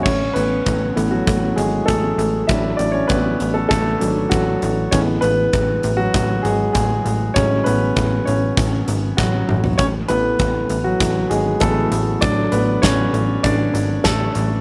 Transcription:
<<
  \new Staff \with { instrumentName = "Grand piano" } { \time 4/4 \key a \major \tempo 4 = 99 <cis' cis''>8 <b b'>4~ <b b'>16 <fis fis'>8. <gis gis'>8 <a a'>4 | <e' e''>8 <d' d''>16 <cis' cis''>16 <b b'>8. <a a'>16 <a a'>4 <fis fis'>4 | <cis' cis''>8 <b b'>4~ <b b'>16 <fis fis'>8. <gis gis'>8 <gis gis'>4 | cis''8 <b b'>4 <cis' cis''>4. <fis fis'>4 |
<cis' cis''>8 b'4~ b'16 <fis fis'>8. <gis gis'>8 a'4 | d''8 <b b'>8 <cis' cis''>4 <d' d''>4 <a a'>4 | }
  \new Staff \with { instrumentName = "Grand piano" } { \time 4/4 \key a \major e'16 r4 r16 <e a b>8 r2 | <fis a d'>4. r4 <fis a d'>8 r4 | <e gis b>4. r2 r8 | <fis gis cis'>1 |
r8 <e a b>8 r2 <e a b>8 r8 | <fis a d'>8 r2. r8 | }
  \new Staff \with { instrumentName = "Analog synth bass" } { \clef bass \time 4/4 \key a \major a,,8 a,,8 a,,8 a,,8 a,,8 gis,,8 a,,8 a,,8 | a,,8 a,,8 a,,8 a,,8 a,,8 gis,,8 a,,8 a,,8 | a,,8 a,,8 a,,8 a,,8 a,,8 gis,,8 a,,8 a,,8 | a,,8 a,,8 a,,8 a,,8 a,,8 gis,,8 a,,8 a,,8 |
a,,8 a,,8 a,,8 a,,8 a,,8 gis,,8 a,,8 a,,8 | a,,8 a,,8 a,,8 a,,8 a,,8 gis,,8 a,,8 a,,8 | }
  \new DrumStaff \with { instrumentName = "Drums" } \drummode { \time 4/4 <cymc bd>8 hh8 <hh bd>8 hh8 <hh bd>8 hh8 <hh bd>8 hh8 | <hh bd>8 hh8 <hh bd>8 hh8 <hh bd>8 hh8 <hh bd>8 hh8 | <hh bd>8 hh8 <hh bd>8 hh8 <hh bd>8 hh8 <hh bd>8 hh8 | <hh bd>8 hh8 <hh bd>8 hh8 <hh bd>8 hh8 <bd sn>8 toml16 tomfh16 |
<hh bd>8 hh8 <hh bd>8 hh8 <hh bd>8 hh8 <hh bd>8 hh8 | <hh bd>8 hh8 <hh bd sn>8 hh8 <hh bd>8 hh8 <hh bd sn>8 hh8 | }
>>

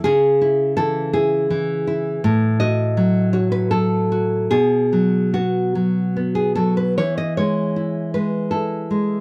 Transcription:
\new Staff \with { instrumentName = "Nylon-string guitar" } { \time 3/4 \key e \major \tempo 4 = 79 << { gis'4 a'8 gis'4 r8 | r8 dis''4 cis''16 b'16 a'4 | gis'4 fis'4~ fis'16 gis'16 a'16 b'16 | cis''16 dis''16 cis''4 b'8 a'4 | } \\ { cis8 e'8 e8 e'8 e8 e'8 | a,8 fis'8 fis8 fis'8 fis8 fis'8 | b,8 fis8 b8 fis8 b8 fis8 | e8 gis8 e'8 gis8 e'8 gis8 | } >> }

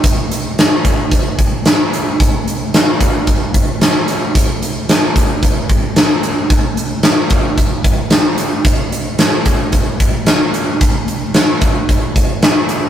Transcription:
\new DrumStaff \with { instrumentName = "Drums" } \drummode { \time 4/4 \tempo 4 = 111 <hh bd>8 hh8 <hh sn>8 <hh bd>8 <hh bd>8 <hh bd>8 <hh sn>8 hh8 | <hh bd>8 hh8 <hh sn>8 <hh bd>8 <hh bd>8 <hh bd>8 <hh sn>8 hh8 | <hh bd>8 hh8 <hh sn>8 <hh bd>8 <hh bd>8 <hh bd>8 <hh sn>8 hh8 | <hh bd>8 hh8 <hh sn>8 <hh bd>8 <hh bd>8 <hh bd>8 <hh sn>8 hh8 |
<hh bd>8 hh8 <hh sn>8 <hh bd>8 <hh bd>8 <hh bd>8 <hh sn>8 hh8 | <hh bd>8 hh8 <hh sn>8 <hh bd>8 <hh bd>8 <hh bd>8 <hh sn>8 hh8 | }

